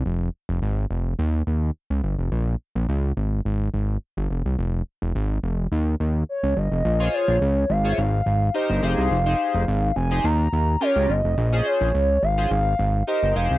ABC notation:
X:1
M:4/4
L:1/16
Q:1/4=106
K:Bbdor
V:1 name="Soft synth lead"
z16 | z16 | z12 d2 e2- | e2 d4 f3/2 =e/2 f4 _e2 f2- |
f6 a2 b4 d2 e2- | e2 d4 f2 f4 e2 f2 |]
V:2 name="Analog polysynth"
z16 | z16 | z16 | z [FAcd]3 z3 [FAcd] z4 [EGBc]2 [EGAc]2 |
z [EGAc]3 z3 [EGAc] z4 [DFGB]2 z2 | z [DFAc]3 z3 [DFAc] z4 [EGBc]2 [EGAc]2 |]
V:3 name="Analog synth bass" clef=bass
F,,,2 z F,,, A,,,2 F,,,2 E,,2 E,,2 z D,, G,,, F,,, | B,,,2 z B,,, D,,2 A,,,2 A,,,2 A,,,2 z G,,, F,,, C,, | F,,,2 z F,,, A,,,2 F,,,2 E,,2 E,,2 z D,, G,,, F,,, | B,,,2 z B,,, D,,2 A,,,2 A,,,2 A,,,2 z G,,, F,,, C,, |
F,,,2 z F,,, A,,,2 F,,,2 E,,2 E,,2 z D,, G,,, F,,, | B,,,2 z B,,, D,,2 A,,,2 A,,,2 A,,,2 z G,,, F,,, C,, |]